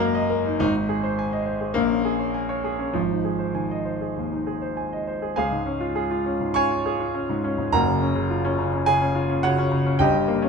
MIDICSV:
0, 0, Header, 1, 2, 480
1, 0, Start_track
1, 0, Key_signature, -5, "major"
1, 0, Tempo, 585366
1, 502, Time_signature, 4, 2, 24, 8
1, 1931, Tempo, 601805
1, 5291, Tempo, 580271
1, 6731, Tempo, 565504
1, 8582, End_track
2, 0, Start_track
2, 0, Title_t, "Grand piano"
2, 0, Program_c, 0, 0
2, 0, Control_c, 0, 64, 127
2, 0, Note_on_c, 0, 30, 75
2, 0, Note_on_c, 0, 42, 81
2, 0, Note_on_c, 0, 54, 66
2, 0, Note_on_c, 0, 56, 99
2, 0, Note_on_c, 0, 58, 108
2, 0, Note_on_c, 0, 63, 64
2, 0, Note_on_c, 0, 70, 74
2, 0, Note_on_c, 0, 75, 68
2, 0, Note_on_c, 0, 82, 81
2, 120, Note_off_c, 0, 75, 0
2, 120, Note_on_c, 0, 75, 89
2, 196, Note_off_c, 0, 82, 0
2, 243, Note_off_c, 0, 70, 0
2, 243, Note_on_c, 0, 70, 83
2, 324, Note_off_c, 0, 75, 0
2, 372, Note_off_c, 0, 63, 0
2, 372, Note_on_c, 0, 63, 76
2, 447, Note_off_c, 0, 70, 0
2, 465, Note_off_c, 0, 42, 0
2, 478, Note_off_c, 0, 63, 0
2, 487, Note_on_c, 0, 32, 84
2, 490, Note_on_c, 0, 63, 108
2, 491, Note_off_c, 0, 58, 0
2, 495, Note_on_c, 0, 44, 70
2, 518, Control_c, 0, 64, 0
2, 520, Note_off_c, 0, 54, 0
2, 523, Note_off_c, 0, 56, 0
2, 524, Note_off_c, 0, 30, 0
2, 610, Note_off_c, 0, 63, 0
2, 622, Note_on_c, 0, 63, 61
2, 657, Control_c, 0, 64, 127
2, 729, Note_on_c, 0, 68, 72
2, 812, Note_off_c, 0, 63, 0
2, 847, Note_on_c, 0, 72, 73
2, 923, Note_off_c, 0, 68, 0
2, 972, Note_on_c, 0, 80, 78
2, 1041, Note_off_c, 0, 72, 0
2, 1087, Note_on_c, 0, 75, 74
2, 1163, Note_off_c, 0, 80, 0
2, 1198, Note_on_c, 0, 72, 65
2, 1279, Note_off_c, 0, 75, 0
2, 1317, Note_on_c, 0, 68, 57
2, 1394, Note_off_c, 0, 72, 0
2, 1412, Note_off_c, 0, 32, 0
2, 1416, Note_off_c, 0, 44, 0
2, 1426, Note_on_c, 0, 58, 108
2, 1436, Note_on_c, 0, 34, 89
2, 1442, Note_off_c, 0, 68, 0
2, 1464, Control_c, 0, 64, 0
2, 1558, Note_on_c, 0, 61, 54
2, 1602, Control_c, 0, 64, 127
2, 1680, Note_on_c, 0, 68, 69
2, 1756, Note_off_c, 0, 61, 0
2, 1799, Note_on_c, 0, 73, 64
2, 1878, Note_off_c, 0, 68, 0
2, 1921, Note_on_c, 0, 80, 66
2, 1997, Note_off_c, 0, 73, 0
2, 2039, Note_on_c, 0, 73, 78
2, 2116, Note_off_c, 0, 80, 0
2, 2160, Note_on_c, 0, 68, 71
2, 2235, Note_off_c, 0, 73, 0
2, 2277, Note_on_c, 0, 61, 67
2, 2356, Note_off_c, 0, 68, 0
2, 2373, Note_off_c, 0, 34, 0
2, 2393, Note_on_c, 0, 53, 89
2, 2397, Note_off_c, 0, 58, 0
2, 2401, Note_on_c, 0, 32, 63
2, 2403, Note_off_c, 0, 61, 0
2, 2425, Control_c, 0, 64, 0
2, 2527, Note_on_c, 0, 63, 58
2, 2578, Control_c, 0, 64, 127
2, 2642, Note_on_c, 0, 68, 57
2, 2724, Note_off_c, 0, 63, 0
2, 2756, Note_on_c, 0, 72, 58
2, 2842, Note_off_c, 0, 68, 0
2, 2875, Note_on_c, 0, 51, 67
2, 2882, Note_on_c, 0, 80, 61
2, 2888, Note_off_c, 0, 53, 0
2, 2959, Note_off_c, 0, 72, 0
2, 3013, Note_on_c, 0, 75, 65
2, 3082, Note_off_c, 0, 80, 0
2, 3126, Note_on_c, 0, 72, 59
2, 3207, Note_off_c, 0, 75, 0
2, 3252, Note_on_c, 0, 68, 50
2, 3324, Note_off_c, 0, 72, 0
2, 3345, Note_off_c, 0, 32, 0
2, 3371, Note_on_c, 0, 39, 59
2, 3448, Note_off_c, 0, 68, 0
2, 3499, Note_on_c, 0, 63, 59
2, 3569, Note_off_c, 0, 39, 0
2, 3615, Note_on_c, 0, 68, 60
2, 3694, Note_off_c, 0, 63, 0
2, 3735, Note_on_c, 0, 72, 64
2, 3812, Note_off_c, 0, 68, 0
2, 3853, Note_off_c, 0, 51, 0
2, 3856, Note_on_c, 0, 80, 59
2, 3932, Note_off_c, 0, 72, 0
2, 3982, Note_on_c, 0, 75, 63
2, 4053, Note_off_c, 0, 80, 0
2, 4099, Note_on_c, 0, 72, 63
2, 4175, Note_off_c, 0, 75, 0
2, 4217, Note_on_c, 0, 68, 64
2, 4292, Note_off_c, 0, 72, 0
2, 4327, Note_off_c, 0, 68, 0
2, 4328, Note_on_c, 0, 80, 86
2, 4336, Note_on_c, 0, 37, 74
2, 4337, Note_on_c, 0, 77, 78
2, 4339, Note_on_c, 0, 68, 79
2, 4358, Control_c, 0, 64, 0
2, 4451, Note_on_c, 0, 44, 64
2, 4508, Control_c, 0, 64, 127
2, 4567, Note_on_c, 0, 61, 69
2, 4642, Note_off_c, 0, 44, 0
2, 4682, Note_on_c, 0, 65, 73
2, 4759, Note_off_c, 0, 61, 0
2, 4790, Note_off_c, 0, 68, 0
2, 4802, Note_on_c, 0, 68, 75
2, 4875, Note_off_c, 0, 65, 0
2, 4925, Note_on_c, 0, 65, 76
2, 4997, Note_off_c, 0, 68, 0
2, 5044, Note_on_c, 0, 61, 71
2, 5121, Note_off_c, 0, 65, 0
2, 5161, Note_on_c, 0, 44, 62
2, 5240, Note_off_c, 0, 61, 0
2, 5257, Note_off_c, 0, 77, 0
2, 5270, Note_on_c, 0, 85, 107
2, 5271, Note_off_c, 0, 80, 0
2, 5281, Note_on_c, 0, 61, 76
2, 5283, Note_on_c, 0, 80, 94
2, 5285, Note_on_c, 0, 73, 95
2, 5360, Note_off_c, 0, 44, 0
2, 5408, Note_on_c, 0, 65, 64
2, 5481, Note_off_c, 0, 61, 0
2, 5531, Note_on_c, 0, 68, 75
2, 5604, Note_off_c, 0, 65, 0
2, 5649, Note_on_c, 0, 65, 72
2, 5725, Note_off_c, 0, 68, 0
2, 5768, Note_on_c, 0, 61, 70
2, 5843, Note_off_c, 0, 65, 0
2, 5891, Note_on_c, 0, 44, 77
2, 5962, Note_off_c, 0, 61, 0
2, 6013, Note_on_c, 0, 61, 78
2, 6083, Note_off_c, 0, 44, 0
2, 6129, Note_on_c, 0, 44, 72
2, 6204, Note_off_c, 0, 61, 0
2, 6215, Note_off_c, 0, 80, 0
2, 6216, Note_off_c, 0, 37, 0
2, 6216, Note_off_c, 0, 73, 0
2, 6241, Note_off_c, 0, 85, 0
2, 6247, Note_on_c, 0, 30, 88
2, 6248, Note_on_c, 0, 82, 110
2, 6250, Note_off_c, 0, 44, 0
2, 6254, Note_on_c, 0, 42, 77
2, 6254, Note_on_c, 0, 70, 78
2, 6258, Note_on_c, 0, 78, 76
2, 6265, Control_c, 0, 64, 0
2, 6372, Note_on_c, 0, 49, 65
2, 6381, Control_c, 0, 64, 127
2, 6487, Note_on_c, 0, 61, 71
2, 6564, Note_off_c, 0, 49, 0
2, 6603, Note_on_c, 0, 49, 74
2, 6681, Note_off_c, 0, 61, 0
2, 6727, Note_on_c, 0, 65, 73
2, 6799, Note_off_c, 0, 49, 0
2, 6847, Note_on_c, 0, 61, 88
2, 6922, Note_off_c, 0, 65, 0
2, 6966, Note_on_c, 0, 49, 77
2, 7042, Note_off_c, 0, 61, 0
2, 7091, Note_on_c, 0, 61, 70
2, 7162, Note_off_c, 0, 49, 0
2, 7180, Note_off_c, 0, 70, 0
2, 7182, Note_off_c, 0, 78, 0
2, 7202, Note_on_c, 0, 80, 113
2, 7206, Note_on_c, 0, 49, 81
2, 7206, Note_on_c, 0, 68, 80
2, 7211, Note_off_c, 0, 82, 0
2, 7284, Note_off_c, 0, 61, 0
2, 7333, Note_on_c, 0, 61, 75
2, 7402, Note_off_c, 0, 49, 0
2, 7446, Note_on_c, 0, 65, 84
2, 7526, Note_off_c, 0, 61, 0
2, 7570, Note_on_c, 0, 61, 73
2, 7642, Note_off_c, 0, 65, 0
2, 7657, Note_off_c, 0, 68, 0
2, 7684, Note_on_c, 0, 78, 112
2, 7689, Note_off_c, 0, 80, 0
2, 7691, Note_on_c, 0, 49, 83
2, 7692, Note_on_c, 0, 73, 85
2, 7697, Note_on_c, 0, 66, 86
2, 7764, Note_off_c, 0, 61, 0
2, 7814, Note_on_c, 0, 61, 86
2, 7885, Note_off_c, 0, 49, 0
2, 7925, Note_on_c, 0, 49, 88
2, 8006, Note_off_c, 0, 61, 0
2, 8051, Note_on_c, 0, 61, 80
2, 8121, Note_off_c, 0, 49, 0
2, 8137, Note_off_c, 0, 30, 0
2, 8138, Note_off_c, 0, 73, 0
2, 8140, Note_off_c, 0, 42, 0
2, 8141, Note_off_c, 0, 66, 0
2, 8157, Note_on_c, 0, 79, 104
2, 8160, Note_on_c, 0, 31, 83
2, 8167, Note_on_c, 0, 43, 81
2, 8168, Note_off_c, 0, 78, 0
2, 8169, Note_on_c, 0, 67, 82
2, 8170, Note_on_c, 0, 75, 91
2, 8172, Note_off_c, 0, 61, 0
2, 8188, Control_c, 0, 64, 0
2, 8284, Note_on_c, 0, 55, 65
2, 8335, Control_c, 0, 64, 127
2, 8403, Note_on_c, 0, 58, 78
2, 8479, Note_off_c, 0, 55, 0
2, 8524, Note_on_c, 0, 61, 84
2, 8582, Note_off_c, 0, 31, 0
2, 8582, Note_off_c, 0, 43, 0
2, 8582, Note_off_c, 0, 58, 0
2, 8582, Note_off_c, 0, 61, 0
2, 8582, Note_off_c, 0, 67, 0
2, 8582, Note_off_c, 0, 75, 0
2, 8582, Note_off_c, 0, 79, 0
2, 8582, End_track
0, 0, End_of_file